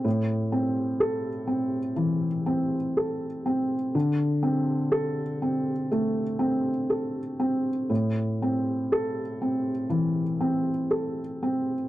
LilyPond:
\new Staff \with { instrumentName = "Felt piano" } { \time 4/4 \key a \minor \tempo 4 = 61 << { r4 a'4 r2 | r4 a'4 r2 | r4 a'4 r2 | } \\ { a,8 c'4 c'8 e8 c'8 a'8 c'8 | d8 c'4 c'8 a8 c'8 a'8 c'8 | a,8 c'4 c'8 e8 c'8 a'8 c'8 | } >> }